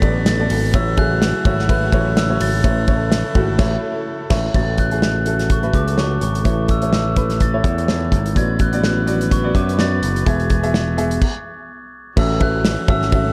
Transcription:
Already playing: A2 D3 F#3 A3 B3 F#4 A4 C#5 D5 A6
0.02 A1 B3 A4 D5, kick, ride
0.26 A6, snare, ride
0.39 B3 A4 D5
0.50 G#1, open hi-hat, ride
0.74 A1 A2 C#3 E3 F#3 A3 E4 F#4 C#5 E6, kick, hi-hat pedal, ride
0.97 A3 F#4 G#4 F#6, kick, ride
1.22 snare, ride
1.45 G#1 A3 F#4 C#5 E6, kick, ride
1.59 snare
1.69 A3 F#4 B4 F#6, kick, ride
1.92 A1 A3 F#4 C#5, kick, ride
2.17 E6, snare, ride
2.29 A3 F#4 C#5
2.40 G#1 A6, open hi-hat, ride
2.63 A1 A2 E3 A3 E4 A4 C#5, kick, hi-hat pedal, ride
2.88 A3 E4 C#5, kick, ride
3.12 snare, ride
3.35 G#1 A3 E4 F#4, kick, ride
3.59 A1 A3 E4 C#5, kick, snare, crash
4.30 A1 A3 E4 C#5, kick, snare, crash
4.54 A1 A2 C#3 F#3 A3 F#4 A4 C#5 A6, kick, crash
4.78 F#6, kick, closed hi-hat
4.91 A3 F#4 G#4, closed hi-hat
5.02 F#6, snare
5.26 A3 F#4 A4, closed hi-hat
5.39 snare, closed hi-hat
5.50 C#6, kick, closed hi-hat
5.63 A3 F#4 B4, closed hi-hat
5.73 C#2 D6, kick, closed hi-hat
5.88 closed hi-hat
5.97 A3 F#4 C#5 C#6, snare
6.21 G#1 C#6, closed hi-hat
6.35 closed hi-hat
6.44 A1 A2 E3 A3 E4 C#5 C#6, kick, closed hi-hat
6.68 E6, kick, closed hi-hat
6.82 A3 E4 C#5, closed hi-hat
6.93 E6, snare
7.16 A3 E4 B4, kick, closed hi-hat
7.30 snare, closed hi-hat
7.40 A6, kick, closed hi-hat
7.53 A3 E4 C#5
7.64 E2, kick, closed hi-hat
7.78 closed hi-hat
7.87 A3 E4 C#5, snare
8.12 G#1, kick, closed hi-hat
8.26 closed hi-hat
8.35 A1 A2 D3 F#3 B3 F#4 B4 D5 G#6, kick, closed hi-hat
8.59 F#6, kick, closed hi-hat
8.73 B3 F#4 D5, closed hi-hat
8.84 F#6, snare
9.07 B3 F#4 D5, closed hi-hat
9.21 closed hi-hat
9.31 C#6, kick, closed hi-hat
9.44 B3 F#4 D5
9.55 F#2 D6, kick, closed hi-hat
9.69 closed hi-hat
9.78 B3 F#4 D5 A6, snare
10.02 F#1, closed hi-hat
10.16 closed hi-hat
10.25 E1 B2 E3 G#3 B3 G#4 E5 G#6, kick, closed hi-hat
10.40 closed hi-hat
10.50 kick, closed hi-hat
10.63 B3 G#4 E5, closed hi-hat
10.74 snare
10.97 B3 G#4 E5, closed hi-hat
11.11 closed hi-hat
11.22 kick, crash
12.17 A1 A2 E3 F#3 A3 C#4 F#4 A4 E5 E6, kick, crash
12.40 C#4 F#4 A4 E5 F#6, kick, ride
12.65 snare, ride
12.88 G#1 C#4 F#4 A4 E5 E6, kick, ride
13.02 snare
13.11 C#4 F#4 A4 E5, kick, ride

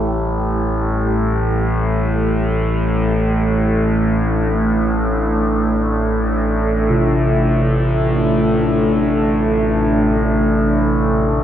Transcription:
Already playing: A1 A2 A3 E4 G4
3.28 D4
3.51 A4
4.70 E5
6.90 C3

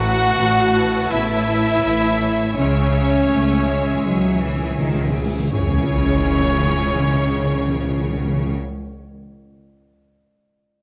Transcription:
Already playing: A1 A2 F#4 B4 C#5 E5 F#5 A5
0.39 A1 A2
1.10 A1 A2 C#3 B3 E4 E5
1.84 A1 A2
2.55 C#2 C#3 E3 G#3 C#4 G#4 C#5 G#5, reverse cymbal
2.72 C#3
2.80 C#3
2.87 C#3
3.10 C#3
3.17 C#3
3.25 C#3
3.30 C#2 C#3 A3
3.41 C#3
3.48 C#3
3.56 C#3
3.64 C#3 G#3
3.71 C#3
3.79 C#3
3.86 C#3
3.94 C#3
4.02 C#2 C#3 E3 F#3 G#3
4.10 C#3
4.18 C#3
4.26 C#3
4.34 C#3
4.41 C#3 E3
4.49 C#3
4.55 C#3
4.63 C#3
4.70 C#3
4.78 C#2 C#3 D#3
4.85 C#3
4.93 C#3
5.01 C#3
5.08 C#3
5.14 C#3
5.24 C#3
5.31 C#3
5.39 C#3
5.51 C#2 C#3 E3 G#3 C#4 E4 G#4 C#5 G#5, sub drop
5.58 C#3
5.66 C#3
5.73 C#3
5.81 C#3
5.88 C#3
5.95 C#3
6.03 C#3
6.10 C#3
6.18 C#3
6.25 C#3
6.32 C#3
6.39 C#3
6.45 C#3
6.52 C#3
6.59 C#3
6.66 C#3
6.73 C#3
6.81 C#3
6.88 C#3
6.95 C#3
7.03 C#3
7.11 C#3
7.18 C#3
7.25 C#3
7.32 C#3
7.39 C#3
7.46 C#3
7.54 C#3
7.61 C#3
7.68 C#3
7.75 C#3
7.82 C#3
7.90 C#3
7.97 C#3
8.04 C#3
8.11 C#3
8.18 C#3
8.25 C#3
8.33 C#3
8.40 C#3
8.47 C#3

